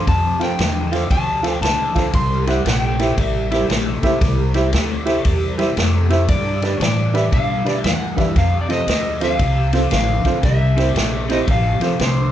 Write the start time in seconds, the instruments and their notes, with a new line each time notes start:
0.07 overdriven electric guitar F2 C3, upright bass F2, clean electric guitar A5, kick, ride
0.39 overdriven electric guitar F2 C3, upright piano F4 A4 C5 F5, clean electric guitar G5, snare, ride
0.58 upright bass E2, overdriven electric guitar F2 D3, snare, ride
0.91 overdriven electric guitar F2 D3, upright piano F4 A4 C5 F5, snare, ride
1.10 upright bass D2, overdriven electric guitar F2 C3, clean electric guitar A5, kick, ride
1.43 overdriven electric guitar F2 C3, upright piano F4 A4 C5 F5, snare, ride
1.61 upright bass C#2, overdriven electric guitar F2 D3, clean electric guitar A5, snare, ride
1.95 overdriven electric guitar F2 D3, upright piano F4 A4 C5 F5, kick, snare, ride
2.13 upright bass C2, overdriven electric guitar C3 G3, clean electric guitar C6, kick, ride
2.46 overdriven electric guitar C3 G3, upright piano E4 G4 C5 E5, clean electric guitar F#5, snare, ride
2.65 upright bass A#1, overdriven electric guitar C3 A3, clean electric guitar G5, snare, ride
2.99 overdriven electric guitar C3 A3, upright piano E4 G4 C5 E5, snare, ride
3.17 upright bass A1, overdriven electric guitar C3 G3, kick, ride
3.21 clean electric guitar E5
3.51 overdriven electric guitar C3 G3, upright piano E4 G4 C5 E5, snare, ride
3.69 upright bass A#1, overdriven electric guitar C3 A3, snare, ride
4.02 overdriven electric guitar C3 A3, upright piano E4 G4 C5 E5, muted upright bass stroke, kick, snare, ride
4.20 upright bass C2, overdriven electric guitar C3 G3, kick, snare, ride
4.54 overdriven electric guitar C3 G3, upright piano E4 G4 C5 E5, snare, ride
4.72 upright bass D2, overdriven electric guitar C3 A3, snare, ride
5.05 overdriven electric guitar C3 A3, upright piano E4 G4 C5 E5, snare, ride
5.25 upright bass E2, overdriven electric guitar C3 G3, kick, ride
5.58 overdriven electric guitar C3 G3, upright piano E4 G4 C5 E5, snare, ride
5.76 upright bass F2, overdriven electric guitar C3 A3, snare, ride
6.09 overdriven electric guitar C3 A3, upright piano E4 G4 C5 E5, snare, ride
6.28 overdriven electric guitar G2 D3, upright bass G2, clean electric guitar D5, kick, ride
6.62 overdriven electric guitar G2 D3, upright piano D4 G4 B4 D5, snare, ride
6.77 overdriven electric guitar G2 E3, upright bass A2, clean electric guitar C#5, ride
6.82 clean electric guitar D5, snare
7.13 overdriven electric guitar G2 E3, upright piano D4 G4 B4 E5, snare, ride
7.32 overdriven electric guitar G2 D3, upright bass B2, clean electric guitar F5, kick, ride
7.65 overdriven electric guitar G2 D3, upright piano D4 G4 B4 D5, clean electric guitar E5, snare, ride
7.84 upright bass E2, overdriven electric guitar G2 E3, clean electric guitar F#5, snare, ride
8.16 overdriven electric guitar G2 E3, upright piano D4 G4 B4 E5, kick, snare, ride
8.36 upright bass F2, overdriven electric guitar F2 C3, clean electric guitar F5, kick, snare, ride
8.61 clean electric guitar D5
8.68 overdriven electric guitar F2 C3, upright piano C4 F4 A4 C5, clean electric guitar D#5, snare, ride
8.87 upright bass D2, overdriven electric guitar F2 D3, snare, ride
9.21 overdriven electric guitar F2 D3, upright piano C4 F4 A4 C5, clean electric guitar F5, snare, ride
9.39 upright bass C2, overdriven electric guitar F2 C3, kick, ride
9.73 overdriven electric guitar F2 C3, upright piano C4 F4 A4 C5, snare, ride
9.91 upright bass A1, overdriven electric guitar F2 D3, clean electric guitar F5, snare, ride
10.25 overdriven electric guitar F2 D3, upright piano C4 F4 A4 C5, muted upright bass stroke, kick, snare, ride
10.42 upright bass C2, overdriven electric guitar C3 G3, clean electric guitar E5, kick, snare, ride
10.76 overdriven electric guitar C3 G3, upright piano C4 E4 G4 C5, snare, ride
10.94 upright bass A#1, overdriven electric guitar C3 A3, snare, ride
11.28 overdriven electric guitar C3 A3, upright piano C4 E4 G4 C5, clean electric guitar D#5, snare, ride
11.45 upright bass A1, overdriven electric guitar F2 C3, clean electric guitar E5, kick, ride
11.51 clean electric guitar F5
11.80 overdriven electric guitar F2 C3, upright piano C4 F4 A4 C5, muted upright bass stroke, snare, ride
11.99 upright bass C2, overdriven electric guitar F2 D3, snare, ride
12.04 clean electric guitar C5